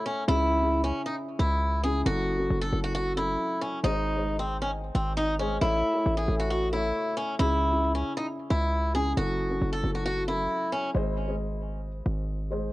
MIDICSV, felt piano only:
0, 0, Header, 1, 2, 480
1, 0, Start_track
1, 0, Key_signature, 4, "minor"
1, 0, Tempo, 444444
1, 303, Time_signature, 4, 2, 24, 8
1, 13746, End_track
2, 0, Start_track
2, 0, Title_t, "Felt piano"
2, 0, Program_c, 0, 0
2, 0, Control_c, 0, 64, 127
2, 0, Note_on_c, 0, 57, 85
2, 0, Note_on_c, 0, 69, 68
2, 0, Note_on_c, 0, 73, 77
2, 0, Note_on_c, 0, 76, 81
2, 299, Note_on_c, 0, 49, 98
2, 304, Note_on_c, 0, 61, 88
2, 309, Note_on_c, 0, 64, 93
2, 313, Note_on_c, 0, 68, 114
2, 319, Control_c, 0, 64, 0
2, 321, Note_off_c, 0, 57, 0
2, 324, Note_off_c, 0, 69, 0
2, 326, Note_off_c, 0, 73, 0
2, 328, Note_off_c, 0, 76, 0
2, 533, Control_c, 0, 64, 127
2, 541, Note_off_c, 0, 49, 0
2, 543, Note_off_c, 0, 61, 0
2, 546, Note_off_c, 0, 64, 0
2, 548, Note_off_c, 0, 68, 0
2, 654, Note_on_c, 0, 49, 73
2, 658, Note_on_c, 0, 61, 67
2, 663, Note_on_c, 0, 64, 71
2, 667, Note_on_c, 0, 68, 78
2, 1298, Note_off_c, 0, 49, 0
2, 1301, Note_off_c, 0, 61, 0
2, 1303, Note_off_c, 0, 64, 0
2, 1305, Note_off_c, 0, 68, 0
2, 1979, Note_on_c, 0, 49, 78
2, 1984, Note_on_c, 0, 61, 75
2, 1988, Note_on_c, 0, 64, 75
2, 1993, Note_on_c, 0, 68, 80
2, 2141, Note_off_c, 0, 49, 0
2, 2143, Note_off_c, 0, 61, 0
2, 2146, Note_off_c, 0, 64, 0
2, 2148, Note_off_c, 0, 68, 0
2, 2215, Note_on_c, 0, 54, 95
2, 2219, Note_on_c, 0, 61, 93
2, 2224, Note_on_c, 0, 64, 96
2, 2228, Note_on_c, 0, 69, 107
2, 2236, Control_c, 0, 64, 0
2, 2397, Control_c, 0, 64, 127
2, 2459, Note_off_c, 0, 54, 0
2, 2461, Note_off_c, 0, 61, 0
2, 2463, Note_off_c, 0, 64, 0
2, 2466, Note_off_c, 0, 69, 0
2, 2568, Note_on_c, 0, 54, 73
2, 2573, Note_on_c, 0, 61, 68
2, 2578, Note_on_c, 0, 64, 66
2, 2582, Note_on_c, 0, 69, 79
2, 2816, Note_off_c, 0, 54, 0
2, 2818, Note_off_c, 0, 61, 0
2, 2820, Note_off_c, 0, 64, 0
2, 2823, Note_off_c, 0, 69, 0
2, 2932, Note_on_c, 0, 54, 75
2, 2937, Note_on_c, 0, 61, 73
2, 2942, Note_on_c, 0, 64, 67
2, 2946, Note_on_c, 0, 69, 82
2, 3257, Note_off_c, 0, 54, 0
2, 3260, Note_off_c, 0, 61, 0
2, 3262, Note_off_c, 0, 64, 0
2, 3265, Note_off_c, 0, 69, 0
2, 3407, Note_on_c, 0, 54, 76
2, 3412, Note_on_c, 0, 61, 72
2, 3417, Note_on_c, 0, 64, 77
2, 3421, Note_on_c, 0, 69, 83
2, 3895, Note_off_c, 0, 54, 0
2, 3898, Note_off_c, 0, 61, 0
2, 3900, Note_off_c, 0, 64, 0
2, 3902, Note_off_c, 0, 69, 0
2, 4138, Note_on_c, 0, 56, 98
2, 4143, Note_on_c, 0, 68, 90
2, 4148, Note_on_c, 0, 72, 98
2, 4153, Note_on_c, 0, 75, 114
2, 4156, Control_c, 0, 64, 0
2, 4316, Control_c, 0, 64, 127
2, 4381, Note_off_c, 0, 56, 0
2, 4383, Note_off_c, 0, 68, 0
2, 4385, Note_off_c, 0, 72, 0
2, 4388, Note_off_c, 0, 75, 0
2, 4497, Note_on_c, 0, 56, 69
2, 4502, Note_on_c, 0, 68, 66
2, 4507, Note_on_c, 0, 72, 62
2, 4511, Note_on_c, 0, 75, 79
2, 5140, Note_off_c, 0, 56, 0
2, 5142, Note_off_c, 0, 68, 0
2, 5145, Note_off_c, 0, 72, 0
2, 5147, Note_off_c, 0, 75, 0
2, 5825, Note_on_c, 0, 56, 78
2, 5829, Note_on_c, 0, 68, 72
2, 5834, Note_on_c, 0, 72, 76
2, 5839, Note_on_c, 0, 75, 88
2, 5984, Note_off_c, 0, 56, 0
2, 5986, Note_off_c, 0, 68, 0
2, 5989, Note_off_c, 0, 72, 0
2, 5991, Note_off_c, 0, 75, 0
2, 6060, Note_on_c, 0, 57, 87
2, 6065, Note_on_c, 0, 69, 95
2, 6070, Note_on_c, 0, 73, 91
2, 6074, Note_on_c, 0, 76, 112
2, 6078, Control_c, 0, 64, 0
2, 6274, Control_c, 0, 64, 127
2, 6302, Note_off_c, 0, 57, 0
2, 6304, Note_off_c, 0, 69, 0
2, 6306, Note_off_c, 0, 73, 0
2, 6309, Note_off_c, 0, 76, 0
2, 6411, Note_on_c, 0, 57, 67
2, 6416, Note_on_c, 0, 69, 66
2, 6420, Note_on_c, 0, 73, 65
2, 6425, Note_on_c, 0, 76, 74
2, 6657, Note_off_c, 0, 57, 0
2, 6659, Note_off_c, 0, 69, 0
2, 6662, Note_off_c, 0, 73, 0
2, 6664, Note_off_c, 0, 76, 0
2, 6776, Note_on_c, 0, 57, 73
2, 6781, Note_on_c, 0, 69, 72
2, 6785, Note_on_c, 0, 73, 70
2, 6790, Note_on_c, 0, 76, 79
2, 7099, Note_off_c, 0, 57, 0
2, 7102, Note_off_c, 0, 69, 0
2, 7104, Note_off_c, 0, 73, 0
2, 7107, Note_off_c, 0, 76, 0
2, 7261, Note_on_c, 0, 57, 85
2, 7265, Note_on_c, 0, 69, 69
2, 7270, Note_on_c, 0, 73, 75
2, 7275, Note_on_c, 0, 76, 81
2, 7742, Note_off_c, 0, 57, 0
2, 7744, Note_off_c, 0, 69, 0
2, 7746, Note_off_c, 0, 73, 0
2, 7749, Note_off_c, 0, 76, 0
2, 7979, Note_on_c, 0, 49, 96
2, 7984, Note_on_c, 0, 61, 89
2, 7988, Note_on_c, 0, 64, 97
2, 7993, Note_on_c, 0, 68, 111
2, 7995, Control_c, 0, 64, 0
2, 8181, Control_c, 0, 64, 127
2, 8221, Note_off_c, 0, 49, 0
2, 8223, Note_off_c, 0, 61, 0
2, 8226, Note_off_c, 0, 64, 0
2, 8228, Note_off_c, 0, 68, 0
2, 8333, Note_on_c, 0, 49, 71
2, 8338, Note_on_c, 0, 61, 67
2, 8342, Note_on_c, 0, 64, 68
2, 8347, Note_on_c, 0, 68, 77
2, 8978, Note_off_c, 0, 49, 0
2, 8980, Note_off_c, 0, 61, 0
2, 8983, Note_off_c, 0, 64, 0
2, 8985, Note_off_c, 0, 68, 0
2, 9660, Note_on_c, 0, 49, 81
2, 9664, Note_on_c, 0, 61, 75
2, 9669, Note_on_c, 0, 64, 70
2, 9674, Note_on_c, 0, 68, 83
2, 9821, Note_off_c, 0, 49, 0
2, 9824, Note_off_c, 0, 61, 0
2, 9826, Note_off_c, 0, 64, 0
2, 9829, Note_off_c, 0, 68, 0
2, 9896, Note_on_c, 0, 54, 91
2, 9900, Note_on_c, 0, 61, 90
2, 9905, Note_on_c, 0, 64, 94
2, 9910, Note_on_c, 0, 69, 108
2, 9916, Control_c, 0, 64, 0
2, 10114, Control_c, 0, 64, 127
2, 10139, Note_off_c, 0, 54, 0
2, 10142, Note_off_c, 0, 61, 0
2, 10144, Note_off_c, 0, 64, 0
2, 10147, Note_off_c, 0, 69, 0
2, 10249, Note_on_c, 0, 54, 70
2, 10254, Note_on_c, 0, 61, 66
2, 10258, Note_on_c, 0, 64, 66
2, 10263, Note_on_c, 0, 69, 73
2, 10496, Note_off_c, 0, 54, 0
2, 10499, Note_off_c, 0, 61, 0
2, 10501, Note_off_c, 0, 64, 0
2, 10503, Note_off_c, 0, 69, 0
2, 10613, Note_on_c, 0, 54, 74
2, 10618, Note_on_c, 0, 61, 66
2, 10622, Note_on_c, 0, 64, 68
2, 10627, Note_on_c, 0, 69, 78
2, 10938, Note_off_c, 0, 54, 0
2, 10940, Note_off_c, 0, 61, 0
2, 10943, Note_off_c, 0, 64, 0
2, 10945, Note_off_c, 0, 69, 0
2, 11089, Note_on_c, 0, 54, 75
2, 11094, Note_on_c, 0, 61, 70
2, 11098, Note_on_c, 0, 64, 72
2, 11103, Note_on_c, 0, 69, 82
2, 11576, Note_off_c, 0, 54, 0
2, 11578, Note_off_c, 0, 61, 0
2, 11581, Note_off_c, 0, 64, 0
2, 11583, Note_off_c, 0, 69, 0
2, 11819, Note_on_c, 0, 56, 96
2, 11824, Note_on_c, 0, 68, 87
2, 11828, Note_on_c, 0, 72, 95
2, 11833, Note_on_c, 0, 75, 109
2, 11836, Control_c, 0, 64, 0
2, 12014, Control_c, 0, 64, 127
2, 12061, Note_off_c, 0, 56, 0
2, 12064, Note_off_c, 0, 68, 0
2, 12066, Note_off_c, 0, 72, 0
2, 12068, Note_off_c, 0, 75, 0
2, 12178, Note_on_c, 0, 56, 68
2, 12183, Note_on_c, 0, 68, 62
2, 12187, Note_on_c, 0, 72, 63
2, 12192, Note_on_c, 0, 75, 80
2, 12820, Note_off_c, 0, 56, 0
2, 12823, Note_off_c, 0, 68, 0
2, 12825, Note_off_c, 0, 72, 0
2, 12827, Note_off_c, 0, 75, 0
2, 13504, Note_on_c, 0, 56, 77
2, 13509, Note_on_c, 0, 68, 70
2, 13514, Note_on_c, 0, 72, 72
2, 13519, Note_on_c, 0, 75, 81
2, 13664, Note_off_c, 0, 56, 0
2, 13666, Note_off_c, 0, 68, 0
2, 13669, Note_off_c, 0, 72, 0
2, 13671, Note_off_c, 0, 75, 0
2, 13746, End_track
0, 0, End_of_file